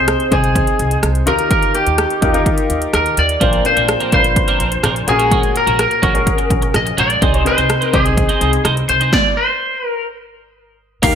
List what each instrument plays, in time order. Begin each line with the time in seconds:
Already playing: upright bass C2, grand piano C3 C4 D#4 G#4 C5, lead electric guitar C5
0.08 cross-stick, closed hi-hat
0.20 closed hi-hat
0.31 upright bass C2, grand piano C4 D#4 G#4 C5, lead electric guitar G#4, kick, closed hi-hat
0.44 closed hi-hat
0.55 kick, closed hi-hat
0.67 closed hi-hat
0.79 upright bass C2, closed hi-hat
0.91 closed hi-hat
1.03 upright bass C2, cross-stick, closed hi-hat
1.15 closed hi-hat
1.26 upright bass D#2, grand piano D#3 D#4 F4 G4 A#4, lead electric guitar A#4, closed hi-hat
1.39 closed hi-hat
1.51 lead electric guitar A#4, kick, closed hi-hat
1.63 closed hi-hat
1.75 lead electric guitar G4, closed hi-hat
1.86 upright bass D#2, closed hi-hat
1.98 cross-stick, closed hi-hat
2.10 closed hi-hat
2.21 upright bass D#2, grand piano D#4 F4 G4 A#4, kick, closed hi-hat
2.33 grand piano D#4 F4 G4 A#4, closed hi-hat
2.46 kick, closed hi-hat
2.58 closed hi-hat
2.70 upright bass D#2, closed hi-hat
2.82 closed hi-hat
2.93 upright bass D#2, lead electric guitar A#4, cross-stick, closed hi-hat
3.06 closed hi-hat
3.17 upright bass D#2, lead electric guitar D5, closed hi-hat
3.29 closed hi-hat
3.40 upright bass A#1, grand piano A#2 D4 F4 A#4 C5, clean electric guitar F3 C4 D4 A#4, kick, closed hi-hat
3.53 closed hi-hat
3.64 grand piano C4 F4 A#4 C5, lead electric guitar C5, muted clean electric guitar stroke, closed hi-hat
3.70 grand piano D4
3.76 upright bass A#1, clean electric guitar F3 C4 D4 A#4, closed hi-hat
3.89 cross-stick, closed hi-hat
4.00 clean electric guitar F3 C4 D4 A#4, closed hi-hat
4.12 upright bass A#1, clean electric guitar F3 C4 D4 A#4, grand piano D4 F4 A#4 B4, lead electric guitar C5, kick, closed hi-hat
4.19 grand piano C5
4.24 muted clean electric guitar stroke, closed hi-hat
4.36 muted clean electric guitar stroke, kick, closed hi-hat
4.48 clean electric guitar F3 C4 D4 A#4, closed hi-hat
4.60 upright bass A#1, clean electric guitar F3 C4 D4 A#4, closed hi-hat
4.72 muted clean electric guitar stroke, closed hi-hat
4.83 upright bass A#1, clean electric guitar F3 C4 D4 A#4, cross-stick, closed hi-hat
4.95 muted clean electric guitar stroke, closed hi-hat
5.07 upright bass A#1, grand piano A#2 C#4 F#4 G#4 A#4, lead electric guitar G#4, muted clean electric guitar stroke, closed hi-hat
5.19 clean electric guitar G#3 C#4 F#4 A#4, closed hi-hat
5.31 clean electric guitar G#3 C#4 F#4 A#4, kick, closed hi-hat
5.43 muted clean electric guitar stroke, closed hi-hat
5.55 lead electric guitar A#4, muted clean electric guitar stroke, closed hi-hat
5.67 upright bass A#1, clean electric guitar G#3 C#4 F#4 A#4, closed hi-hat
5.79 lead electric guitar A#4, cross-stick, closed hi-hat
5.91 muted clean electric guitar stroke, closed hi-hat
6.02 upright bass A#1, clean electric guitar G#3 C#4 F#4 A#4, grand piano C#4 F#4 G#4 A#4, kick, closed hi-hat
6.14 grand piano C#4 F#4 G#4 A#4, muted clean electric guitar stroke, closed hi-hat
6.26 muted clean electric guitar stroke, kick, closed hi-hat
6.38 muted clean electric guitar stroke, closed hi-hat
6.50 upright bass A#1, kick, closed hi-hat
6.62 muted clean electric guitar stroke, closed hi-hat
6.74 upright bass A#1, lead electric guitar D#5, cross-stick, closed hi-hat
6.86 muted clean electric guitar stroke, closed hi-hat
6.98 upright bass A#1, clean electric guitar G#3 C#4 F#4 A#4, lead electric guitar D5, closed hi-hat
7.10 muted clean electric guitar stroke, closed hi-hat
7.21 upright bass C2, grand piano C3 C4 D#4 G#4 C5, clean electric guitar C4 D#4 G#4 C5, kick, closed hi-hat
7.34 closed hi-hat
7.45 grand piano C4 D#4 G#4 B4, lead electric guitar C5, muted clean electric guitar stroke, closed hi-hat
7.52 grand piano C5
7.57 upright bass C2, clean electric guitar C4 D#4 G#4 C5, closed hi-hat
7.70 cross-stick, closed hi-hat
7.81 clean electric guitar C4 D#4 G#4 C5, closed hi-hat
7.93 upright bass C2, grand piano C4 D#4 G#4 C5, clean electric guitar C4 D#4 G#4 C5, lead electric guitar G#4, kick, closed hi-hat
8.05 muted clean electric guitar stroke, closed hi-hat
8.17 muted clean electric guitar stroke, kick, closed hi-hat
8.29 clean electric guitar C4 D#4 G#4 C5, closed hi-hat
8.40 upright bass C2, clean electric guitar C4 D#4 G#4 C5, closed hi-hat
8.53 muted clean electric guitar stroke, closed hi-hat
8.64 upright bass C2, clean electric guitar C4 D#4 G#4 C5, cross-stick, closed hi-hat
8.76 muted clean electric guitar stroke, closed hi-hat
8.88 upright bass C2, lead electric guitar C5, muted clean electric guitar stroke, closed hi-hat
9.00 clean electric guitar C4 D#4 G#4 C5, closed hi-hat
9.13 lead electric guitar D5, kick, snare
9.37 lead electric guitar C5
9.87 lead electric guitar A#4
11.02 upright bass D#2, grand piano D#3 A#3 D#4 G4 A#4, analog synth pad D#3 D#4 G4 A#4, clean electric guitar A#3 D#4 G4 A#4, lead electric guitar F5, kick, closed hi-hat, crash